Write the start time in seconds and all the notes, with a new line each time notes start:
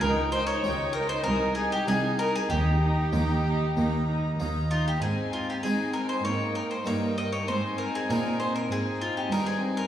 0.01 C#2 D#4 A#4 G5
0.32 D#4 C5 G5
0.47 C#5
0.64 C#2 D#4 G4 G5
0.93 D#4 A#4 G5
1.09 C5
1.24 C2 D#4 A#4 G#5
1.55 D#4 G#4 G#5
1.71 G4
1.87 C2 D#4 G#4 G#5
2.18 D#4 A#4 G#5
2.35 G#4
2.50 D#2 D#4 G4 A#5
2.81 D#4 A#5
3.13 D#2 A#3 D#4 A#5
3.45 D#4 A#5
3.76 D#2 A#3 D#4 A#5
4.07 D#4 A#5
4.39 D#2 A#3 D#4 A#5
4.70 D#4 F4 A#5
4.88 G4
5.02 G#2 C4 D#4 G#4 G#5
5.33 F4
5.50 G4
5.63 G#3 C4 D#4 G#4 G#5
5.93 A#4
6.09 C5
6.24 G#2 A#3 D#4 C#5 G5
6.55 A#4
6.71 C5
6.85 G2 A#3 D#4 C#5 G5
7.18 D#5
7.33 C#5
7.46 G#2 C4 D#4 C5 G#5
7.78 A#4
7.95 G#4
8.09 A#2 G#3 C4 D#4 A#4
8.40 C5
8.56 A#4
8.70 G#2 C4 D#4 G#4 G#5
9.01 F4
9.17 G4
9.31 G2 G#3 C4 D#4 A#4
9.46 G#4
9.77 A#4